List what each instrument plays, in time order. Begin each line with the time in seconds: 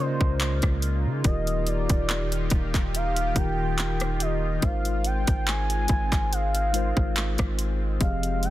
Already playing: tine electric piano C#3 C#4, analog synth pad C#3 G#3 A#3 D#4 F4
0.00 tine electric piano F4 A#4 D5, soft synth lead C5
0.06 tine electric piano D#5
0.21 808-style bass C#2, kick
0.40 clap, closed hi-hat
0.62 808-style bass C#2, kick, cross-stick, closed hi-hat
0.82 closed hi-hat
1.06 808-style bass C#3
1.23 808-style bass D#1, tine electric piano D#3 D#4 F4 G4 A#4, analog synth pad D#3 D#4 G4, soft synth lead D#5, kick, closed hi-hat
1.47 closed hi-hat
1.67 soft synth lead D5, closed hi-hat
1.89 808-style bass D#1, kick, closed hi-hat
2.09 clap, closed hi-hat
2.32 closed hi-hat
2.50 808-style bass D#1, kick, closed hi-hat
2.74 kick, clap, closed hi-hat
2.95 soft synth lead F5, closed hi-hat
3.16 closed hi-hat
3.34 808-style bass D#1, tine electric piano D#3 D#4 F4 G4 A#4, soft synth lead G5, kick, closed hi-hat
3.78 clap, closed hi-hat
4.00 cross-stick, closed hi-hat
4.20 soft synth lead D#5, closed hi-hat
4.61 808-style bass G#1, tine electric piano G#3 D#4 F4 A#4 C5, analog synth pad G#3 C4, soft synth lead F5, kick, closed hi-hat
4.85 closed hi-hat
5.04 soft synth lead G5, closed hi-hat
5.27 808-style bass G#1, kick, closed hi-hat
5.47 soft synth lead G#5, clap, closed hi-hat
5.70 closed hi-hat
5.88 808-style bass G#1, kick, closed hi-hat
6.12 kick, clap, closed hi-hat
6.33 soft synth lead F5, closed hi-hat
6.55 closed hi-hat
6.72 tine electric piano G#3 D#4 F4 A#4 C5, closed hi-hat
6.97 808-style bass G#1, kick
7.16 clap, closed hi-hat
7.38 808-style bass G#1, kick, cross-stick, closed hi-hat
7.59 closed hi-hat
7.99 808-style bass F1, tine electric piano F3 C4 G4 G#4 D#5, analog synth pad F3 G#3 D#4 G5, soft synth lead F5, kick, closed hi-hat
8.23 closed hi-hat
8.43 soft synth lead G5, closed hi-hat